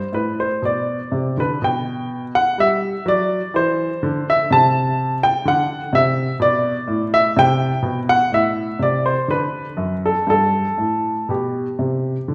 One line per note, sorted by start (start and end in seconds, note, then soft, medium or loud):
0.12 0.48 A2 medium
0.12 0.38 B4 medium
0.40 0.63 C5 medium
0.62 0.98 B2 medium
0.62 1.38 D5 medium
1.12 1.36 C3 medium
1.38 1.61 D3 medium
1.38 1.63 B4 medium
1.62 2.30 B2 medium
1.62 2.24 G5 medium
2.35 2.58 F#5 medium
2.58 2.92 G3 medium
2.58 3.06 E5 medium
3.06 3.40 F#3 medium
3.06 3.54 D5 loud
3.54 3.89 E3 medium
3.54 4.28 C5 medium
4.03 4.38 D3 medium
4.30 4.52 E5 medium
4.51 5.19 C3 medium
4.51 5.12 A5 loud
5.23 5.46 G5 loud
5.45 5.79 D3 medium
5.45 5.94 F#5 medium
5.93 6.27 C3 medium
5.93 6.34 E5 loud
6.40 6.74 B2 medium
6.40 7.02 D5 loud
6.87 7.22 A2 medium
7.14 7.37 E5 loud
7.37 7.70 C3 medium
7.37 7.98 G5 loud
7.82 8.17 B2 medium
8.09 8.32 F#5 loud
8.32 8.66 A2 medium
8.32 8.81 E5 medium
8.79 9.15 C3 medium
8.79 9.05 D5 medium
9.06 9.29 C5 medium
9.28 9.64 D3 medium
9.28 9.93 B4 medium
9.77 10.13 F#2 medium
10.06 10.28 A4 medium
10.27 10.64 G2 medium
10.27 11.29 A4 medium
10.78 11.14 A2 medium
11.29 11.65 B2 medium
11.29 12.34 G4 medium
11.79 12.15 C3 medium
12.28 12.34 D3 medium